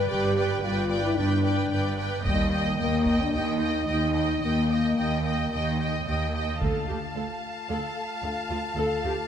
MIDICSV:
0, 0, Header, 1, 9, 480
1, 0, Start_track
1, 0, Tempo, 541516
1, 93, Time_signature, 4, 2, 24, 8
1, 8221, End_track
2, 0, Start_track
2, 0, Title_t, "Violin section"
2, 0, Program_c, 0, 48
2, 89, Note_on_c, 0, 79, 50
2, 307, Note_off_c, 0, 79, 0
2, 318, Note_on_c, 0, 79, 43
2, 555, Note_off_c, 0, 79, 0
2, 565, Note_on_c, 0, 79, 49
2, 796, Note_off_c, 0, 79, 0
2, 807, Note_on_c, 0, 79, 49
2, 1034, Note_off_c, 0, 79, 0
2, 1045, Note_on_c, 0, 79, 52
2, 1269, Note_off_c, 0, 79, 0
2, 1279, Note_on_c, 0, 79, 44
2, 1507, Note_off_c, 0, 79, 0
2, 1518, Note_on_c, 0, 79, 46
2, 1750, Note_off_c, 0, 79, 0
2, 1761, Note_on_c, 0, 79, 38
2, 1984, Note_off_c, 0, 79, 0
2, 1994, Note_on_c, 0, 79, 45
2, 2218, Note_off_c, 0, 79, 0
2, 2229, Note_on_c, 0, 79, 35
2, 2445, Note_off_c, 0, 79, 0
2, 2455, Note_on_c, 0, 79, 41
2, 2690, Note_off_c, 0, 79, 0
2, 2701, Note_on_c, 0, 79, 43
2, 2935, Note_off_c, 0, 79, 0
2, 2946, Note_on_c, 0, 79, 47
2, 3176, Note_off_c, 0, 79, 0
2, 3187, Note_on_c, 0, 79, 39
2, 3427, Note_off_c, 0, 79, 0
2, 3440, Note_on_c, 0, 79, 37
2, 3664, Note_off_c, 0, 79, 0
2, 3674, Note_on_c, 0, 79, 33
2, 3909, Note_off_c, 0, 79, 0
2, 3920, Note_on_c, 0, 79, 42
2, 4161, Note_off_c, 0, 79, 0
2, 4170, Note_on_c, 0, 79, 33
2, 4397, Note_off_c, 0, 79, 0
2, 4408, Note_on_c, 0, 79, 38
2, 4640, Note_off_c, 0, 79, 0
2, 4651, Note_on_c, 0, 79, 37
2, 4882, Note_off_c, 0, 79, 0
2, 4893, Note_on_c, 0, 79, 40
2, 5120, Note_off_c, 0, 79, 0
2, 5131, Note_on_c, 0, 79, 37
2, 5369, Note_off_c, 0, 79, 0
2, 5379, Note_on_c, 0, 79, 33
2, 5615, Note_off_c, 0, 79, 0
2, 5625, Note_on_c, 0, 79, 35
2, 5860, Note_off_c, 0, 79, 0
2, 5869, Note_on_c, 0, 81, 38
2, 8221, Note_off_c, 0, 81, 0
2, 8221, End_track
3, 0, Start_track
3, 0, Title_t, "Violin section"
3, 0, Program_c, 1, 48
3, 81, Note_on_c, 1, 74, 57
3, 316, Note_off_c, 1, 74, 0
3, 327, Note_on_c, 1, 74, 45
3, 548, Note_off_c, 1, 74, 0
3, 558, Note_on_c, 1, 74, 44
3, 777, Note_off_c, 1, 74, 0
3, 787, Note_on_c, 1, 74, 47
3, 1026, Note_off_c, 1, 74, 0
3, 1036, Note_on_c, 1, 74, 42
3, 1263, Note_off_c, 1, 74, 0
3, 1274, Note_on_c, 1, 74, 41
3, 1513, Note_off_c, 1, 74, 0
3, 1528, Note_on_c, 1, 74, 43
3, 1746, Note_off_c, 1, 74, 0
3, 1757, Note_on_c, 1, 74, 40
3, 1988, Note_on_c, 1, 75, 50
3, 1993, Note_off_c, 1, 74, 0
3, 2219, Note_off_c, 1, 75, 0
3, 2230, Note_on_c, 1, 75, 44
3, 2461, Note_off_c, 1, 75, 0
3, 2472, Note_on_c, 1, 75, 40
3, 2708, Note_off_c, 1, 75, 0
3, 2717, Note_on_c, 1, 75, 43
3, 2948, Note_off_c, 1, 75, 0
3, 2959, Note_on_c, 1, 75, 36
3, 3182, Note_off_c, 1, 75, 0
3, 3193, Note_on_c, 1, 75, 40
3, 3420, Note_off_c, 1, 75, 0
3, 3431, Note_on_c, 1, 75, 43
3, 3664, Note_off_c, 1, 75, 0
3, 3675, Note_on_c, 1, 75, 37
3, 3911, Note_off_c, 1, 75, 0
3, 3922, Note_on_c, 1, 75, 41
3, 4162, Note_off_c, 1, 75, 0
3, 4171, Note_on_c, 1, 75, 35
3, 4396, Note_off_c, 1, 75, 0
3, 4407, Note_on_c, 1, 75, 38
3, 4646, Note_off_c, 1, 75, 0
3, 4657, Note_on_c, 1, 75, 39
3, 4892, Note_off_c, 1, 75, 0
3, 4903, Note_on_c, 1, 75, 35
3, 5127, Note_off_c, 1, 75, 0
3, 5138, Note_on_c, 1, 75, 34
3, 5363, Note_off_c, 1, 75, 0
3, 5373, Note_on_c, 1, 75, 36
3, 5612, Note_off_c, 1, 75, 0
3, 5623, Note_on_c, 1, 75, 31
3, 5859, Note_off_c, 1, 75, 0
3, 5869, Note_on_c, 1, 77, 39
3, 8221, Note_off_c, 1, 77, 0
3, 8221, End_track
4, 0, Start_track
4, 0, Title_t, "Viola section"
4, 0, Program_c, 2, 48
4, 97, Note_on_c, 2, 71, 50
4, 316, Note_off_c, 2, 71, 0
4, 326, Note_on_c, 2, 71, 48
4, 553, Note_off_c, 2, 71, 0
4, 564, Note_on_c, 2, 71, 49
4, 792, Note_off_c, 2, 71, 0
4, 803, Note_on_c, 2, 71, 42
4, 1034, Note_off_c, 2, 71, 0
4, 1045, Note_on_c, 2, 71, 49
4, 1273, Note_off_c, 2, 71, 0
4, 1283, Note_on_c, 2, 71, 48
4, 1508, Note_off_c, 2, 71, 0
4, 1519, Note_on_c, 2, 71, 38
4, 1749, Note_off_c, 2, 71, 0
4, 1760, Note_on_c, 2, 71, 41
4, 1992, Note_on_c, 2, 75, 47
4, 1994, Note_off_c, 2, 71, 0
4, 2226, Note_off_c, 2, 75, 0
4, 2237, Note_on_c, 2, 75, 43
4, 2471, Note_off_c, 2, 75, 0
4, 2482, Note_on_c, 2, 75, 42
4, 2700, Note_off_c, 2, 75, 0
4, 2711, Note_on_c, 2, 75, 37
4, 2942, Note_off_c, 2, 75, 0
4, 2953, Note_on_c, 2, 75, 40
4, 3185, Note_off_c, 2, 75, 0
4, 3195, Note_on_c, 2, 75, 42
4, 3431, Note_off_c, 2, 75, 0
4, 3441, Note_on_c, 2, 75, 39
4, 3671, Note_off_c, 2, 75, 0
4, 3681, Note_on_c, 2, 75, 40
4, 3913, Note_off_c, 2, 75, 0
4, 3924, Note_on_c, 2, 75, 37
4, 4156, Note_off_c, 2, 75, 0
4, 4167, Note_on_c, 2, 75, 37
4, 4405, Note_off_c, 2, 75, 0
4, 4417, Note_on_c, 2, 75, 32
4, 4652, Note_off_c, 2, 75, 0
4, 4665, Note_on_c, 2, 75, 36
4, 4888, Note_off_c, 2, 75, 0
4, 4899, Note_on_c, 2, 75, 37
4, 5131, Note_off_c, 2, 75, 0
4, 5141, Note_on_c, 2, 75, 38
4, 5369, Note_off_c, 2, 75, 0
4, 5380, Note_on_c, 2, 75, 31
4, 5615, Note_off_c, 2, 75, 0
4, 5626, Note_on_c, 2, 75, 35
4, 5861, Note_off_c, 2, 75, 0
4, 5870, Note_on_c, 2, 69, 42
4, 6090, Note_off_c, 2, 69, 0
4, 6103, Note_on_c, 2, 67, 26
4, 6174, Note_off_c, 2, 67, 0
4, 6344, Note_on_c, 2, 69, 30
4, 6415, Note_off_c, 2, 69, 0
4, 6823, Note_on_c, 2, 69, 38
4, 7044, Note_off_c, 2, 69, 0
4, 7294, Note_on_c, 2, 69, 26
4, 7365, Note_off_c, 2, 69, 0
4, 7537, Note_on_c, 2, 65, 35
4, 7608, Note_off_c, 2, 65, 0
4, 7774, Note_on_c, 2, 69, 46
4, 7996, Note_off_c, 2, 69, 0
4, 8023, Note_on_c, 2, 67, 37
4, 8094, Note_off_c, 2, 67, 0
4, 8221, End_track
5, 0, Start_track
5, 0, Title_t, "French horn section"
5, 0, Program_c, 3, 60
5, 0, Note_on_c, 3, 71, 88
5, 75, Note_on_c, 3, 67, 68
5, 91, Note_off_c, 3, 71, 0
5, 551, Note_off_c, 3, 67, 0
5, 555, Note_on_c, 3, 65, 80
5, 909, Note_on_c, 3, 64, 68
5, 920, Note_off_c, 3, 65, 0
5, 1028, Note_on_c, 3, 62, 62
5, 1037, Note_off_c, 3, 64, 0
5, 1752, Note_off_c, 3, 62, 0
5, 1998, Note_on_c, 3, 55, 70
5, 2442, Note_off_c, 3, 55, 0
5, 2472, Note_on_c, 3, 58, 70
5, 2825, Note_off_c, 3, 58, 0
5, 2846, Note_on_c, 3, 62, 63
5, 2960, Note_off_c, 3, 62, 0
5, 2963, Note_on_c, 3, 63, 58
5, 3429, Note_off_c, 3, 63, 0
5, 3440, Note_on_c, 3, 63, 65
5, 3915, Note_off_c, 3, 63, 0
5, 3927, Note_on_c, 3, 58, 63
5, 5353, Note_off_c, 3, 58, 0
5, 5862, Note_on_c, 3, 65, 39
5, 5864, Note_on_c, 3, 57, 39
5, 8221, Note_off_c, 3, 57, 0
5, 8221, Note_off_c, 3, 65, 0
5, 8221, End_track
6, 0, Start_track
6, 0, Title_t, "Timpani"
6, 0, Program_c, 4, 47
6, 5861, Note_on_c, 4, 50, 36
6, 6546, Note_off_c, 4, 50, 0
6, 8221, End_track
7, 0, Start_track
7, 0, Title_t, "Cello section"
7, 0, Program_c, 5, 48
7, 84, Note_on_c, 5, 43, 59
7, 508, Note_off_c, 5, 43, 0
7, 562, Note_on_c, 5, 43, 58
7, 987, Note_off_c, 5, 43, 0
7, 1045, Note_on_c, 5, 43, 57
7, 1466, Note_off_c, 5, 43, 0
7, 1523, Note_on_c, 5, 43, 51
7, 1943, Note_off_c, 5, 43, 0
7, 1998, Note_on_c, 5, 39, 51
7, 2420, Note_off_c, 5, 39, 0
7, 2473, Note_on_c, 5, 39, 54
7, 2896, Note_off_c, 5, 39, 0
7, 2957, Note_on_c, 5, 39, 49
7, 3380, Note_off_c, 5, 39, 0
7, 3438, Note_on_c, 5, 39, 50
7, 3865, Note_off_c, 5, 39, 0
7, 3922, Note_on_c, 5, 39, 37
7, 4353, Note_off_c, 5, 39, 0
7, 4413, Note_on_c, 5, 39, 44
7, 4840, Note_off_c, 5, 39, 0
7, 4892, Note_on_c, 5, 39, 49
7, 5321, Note_off_c, 5, 39, 0
7, 5378, Note_on_c, 5, 39, 40
7, 5806, Note_off_c, 5, 39, 0
7, 5867, Note_on_c, 5, 38, 37
7, 5938, Note_off_c, 5, 38, 0
7, 6105, Note_on_c, 5, 38, 31
7, 6176, Note_off_c, 5, 38, 0
7, 6339, Note_on_c, 5, 38, 28
7, 6410, Note_off_c, 5, 38, 0
7, 6818, Note_on_c, 5, 38, 46
7, 6889, Note_off_c, 5, 38, 0
7, 7291, Note_on_c, 5, 38, 35
7, 7362, Note_off_c, 5, 38, 0
7, 7532, Note_on_c, 5, 38, 33
7, 7603, Note_off_c, 5, 38, 0
7, 7769, Note_on_c, 5, 38, 43
7, 7840, Note_off_c, 5, 38, 0
7, 8014, Note_on_c, 5, 38, 38
7, 8085, Note_off_c, 5, 38, 0
7, 8221, End_track
8, 0, Start_track
8, 0, Title_t, "Double bass section"
8, 0, Program_c, 6, 48
8, 87, Note_on_c, 6, 31, 53
8, 510, Note_off_c, 6, 31, 0
8, 565, Note_on_c, 6, 31, 55
8, 988, Note_off_c, 6, 31, 0
8, 1043, Note_on_c, 6, 31, 53
8, 1465, Note_off_c, 6, 31, 0
8, 1518, Note_on_c, 6, 31, 54
8, 1941, Note_off_c, 6, 31, 0
8, 1997, Note_on_c, 6, 39, 51
8, 2419, Note_off_c, 6, 39, 0
8, 2474, Note_on_c, 6, 39, 50
8, 2897, Note_off_c, 6, 39, 0
8, 2956, Note_on_c, 6, 39, 52
8, 3379, Note_off_c, 6, 39, 0
8, 3435, Note_on_c, 6, 39, 44
8, 3864, Note_off_c, 6, 39, 0
8, 3923, Note_on_c, 6, 39, 42
8, 4353, Note_off_c, 6, 39, 0
8, 4409, Note_on_c, 6, 39, 46
8, 4838, Note_off_c, 6, 39, 0
8, 4894, Note_on_c, 6, 39, 49
8, 5322, Note_off_c, 6, 39, 0
8, 5378, Note_on_c, 6, 39, 37
8, 5806, Note_off_c, 6, 39, 0
8, 5862, Note_on_c, 6, 38, 41
8, 6086, Note_off_c, 6, 38, 0
8, 7774, Note_on_c, 6, 38, 49
8, 7996, Note_off_c, 6, 38, 0
8, 8221, End_track
9, 0, Start_track
9, 0, Title_t, "Taiko and cinematic ensemble drums"
9, 1997, Note_on_c, 9, 41, 58
9, 2086, Note_off_c, 9, 41, 0
9, 2710, Note_on_c, 9, 41, 37
9, 2799, Note_off_c, 9, 41, 0
9, 5864, Note_on_c, 9, 41, 37
9, 5952, Note_off_c, 9, 41, 0
9, 8221, End_track
0, 0, End_of_file